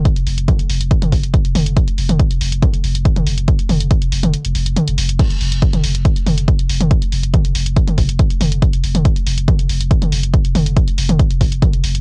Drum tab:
CC |----------------|----------------|----------------|x---------------|
HH |xxoxxxoxxxoxxxox|xxoxxxoxxxoxxxox|xxoxxxoxxxoxxxox|xxoxxxoxxxoxxxox|
T2 |----o----o----o-|---o----o----o--|--o----o----o---|o----o----o----o|
BD |o---o---o-o-o---|o---o---o---o---|o---o-----------|o---o---o---o---|

CC |----------------|----------------|----------------|
HH |xxoxxxoxxxoxxxox|xxoxxxoxxxoxxxox|xxoxxxoxxxoxxxox|
T2 |----o----o----o-|---o----o----o--|--o----o----o---|
BD |o---o---o-o-o---|o---o---o---o---|o---o---o-o-o---|